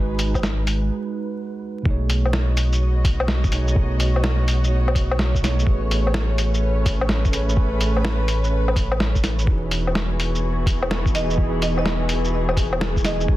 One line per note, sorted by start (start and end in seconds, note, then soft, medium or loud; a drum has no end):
0.00 0.90 G#1 medium
0.00 0.91 G#3 medium
0.00 1.88 G#3 medium
0.00 0.91 D#4 medium
0.00 1.86 D#4 medium
0.00 1.88 F#4 medium
0.00 0.90 G#4 medium
0.00 0.90 B4 medium
0.00 0.91 B4 medium
0.00 1.88 B4 medium
0.19 open hi-hat medium
0.19 shaker medium
0.34 kick medium
0.34 low woodblock soft
0.34 shaker soft
0.43 snare loud
0.43 shaker soft
0.67 open hi-hat medium
0.67 shaker medium
1.82 5.65 B1 medium
1.82 3.49 B2 medium
1.82 3.50 A3 medium
1.82 7.22 B3 medium
1.82 3.51 D#4 medium
1.82 kick loud
1.88 3.52 G#4 medium
1.88 3.53 C#5 medium
2.10 10.50 C#5 medium
2.10 open hi-hat medium
2.10 shaker medium
2.26 6.34 D#5 medium
2.26 low woodblock soft
2.33 snare loud
2.38 7.22 F#4 medium
2.57 open hi-hat medium
2.57 shaker medium
2.73 shaker soft
3.05 kick loud
3.05 open hi-hat medium
3.05 shaker medium
3.20 low woodblock medium
3.28 snare loud
3.44 kick loud
3.44 shaker soft
3.51 3.69 B2 medium
3.51 3.70 A3 medium
3.51 3.70 D#4 medium
3.51 3.71 G#4 medium
3.51 3.71 C#5 medium
3.51 open hi-hat medium
3.51 shaker medium
3.68 shaker soft
3.73 5.39 B2 medium
3.73 5.40 A3 medium
3.73 5.41 D#4 medium
3.73 kick loud
3.79 5.42 G#4 medium
3.79 5.43 C#5 medium
4.00 open hi-hat medium
4.00 shaker medium
4.16 low woodblock soft
4.24 snare loud
4.48 open hi-hat medium
4.48 shaker medium
4.64 shaker soft
4.88 low woodblock medium
4.95 kick loud
4.95 open hi-hat medium
4.95 shaker medium
5.11 low woodblock medium
5.19 snare loud
5.35 kick medium
5.35 shaker soft
5.41 5.60 B2 medium
5.41 5.60 A3 medium
5.41 5.61 D#4 medium
5.41 5.61 G#4 medium
5.41 5.62 C#5 medium
5.41 snare medium
5.41 open hi-hat medium
5.41 shaker medium
5.59 7.29 A3 medium
5.59 shaker soft
5.65 9.46 A1 medium
5.65 9.48 A3 medium
5.65 7.31 G#4 medium
5.65 7.32 B4 medium
5.65 kick loud
5.71 10.35 C#4 medium
5.71 7.33 C#5 medium
5.91 open hi-hat medium
5.91 shaker medium
6.07 low woodblock soft
6.14 snare loud
6.38 open hi-hat medium
6.38 shaker medium
6.52 10.24 B4 medium
6.52 shaker soft
6.86 kick loud
6.86 open hi-hat medium
6.86 shaker medium
7.01 low woodblock medium
7.09 snare loud
7.25 kick loud
7.25 shaker soft
7.32 7.50 A3 medium
7.32 7.51 G#4 medium
7.32 7.52 B4 medium
7.32 7.52 C#5 medium
7.32 open hi-hat medium
7.32 shaker medium
7.49 shaker soft
7.54 9.20 A3 medium
7.54 9.21 G#4 medium
7.54 kick loud
7.59 9.23 B4 medium
7.59 9.24 C#5 medium
7.81 open hi-hat medium
7.81 shaker medium
7.97 low woodblock soft
8.05 snare loud
8.28 open hi-hat medium
8.28 shaker medium
8.44 shaker soft
8.68 low woodblock medium
8.76 kick loud
8.76 open hi-hat medium
8.76 shaker medium
8.92 low woodblock medium
9.00 snare loud
9.15 kick medium
9.15 shaker soft
9.24 snare medium
9.24 open hi-hat medium
9.24 shaker medium
9.39 shaker soft
9.44 13.27 E1 medium
9.44 11.11 E3 medium
9.44 13.29 E3 medium
9.44 11.12 D#4 medium
9.44 13.37 G#4 medium
9.44 kick loud
9.49 11.13 F#4 medium
9.49 11.15 G#4 medium
9.71 13.37 B3 medium
9.71 13.37 F#4 medium
9.71 open hi-hat medium
9.71 shaker medium
9.87 low woodblock soft
9.95 13.37 G#4 medium
9.95 snare loud
10.20 open hi-hat medium
10.20 shaker medium
10.35 shaker soft
10.66 kick loud
10.66 open hi-hat medium
10.66 shaker medium
10.82 low woodblock medium
10.91 snare loud
11.06 kick loud
11.06 shaker soft
11.13 11.31 E3 medium
11.13 11.32 D#4 medium
11.13 11.33 F#4 medium
11.13 11.40 D#5 medium
11.13 open hi-hat medium
11.13 shaker medium
11.17 11.33 G#4 medium
11.30 shaker soft
11.35 13.01 E3 medium
11.35 13.03 D#4 medium
11.35 kick loud
11.40 13.04 F#4 medium
11.40 13.05 G#4 medium
11.62 11.72 D#5 medium
11.62 open hi-hat medium
11.62 shaker medium
11.78 11.83 D#5 medium
11.78 low woodblock soft
11.86 snare loud
12.09 open hi-hat medium
12.09 shaker medium
12.25 shaker soft
12.49 low woodblock medium
12.57 kick loud
12.57 open hi-hat medium
12.57 shaker medium
12.73 low woodblock medium
12.81 snare loud
12.96 kick medium
12.96 shaker soft
13.02 13.21 E3 medium
13.02 13.22 D#4 medium
13.02 13.23 F#4 medium
13.02 13.23 G#4 medium
13.02 13.35 D#5 medium
13.02 snare medium
13.02 open hi-hat medium
13.02 shaker medium
13.21 13.37 G#3 medium
13.21 shaker soft
13.27 13.37 G#1 medium
13.27 13.37 G#3 medium
13.27 13.37 D#4 medium
13.27 13.37 F#4 medium
13.27 kick loud
13.32 13.37 B4 medium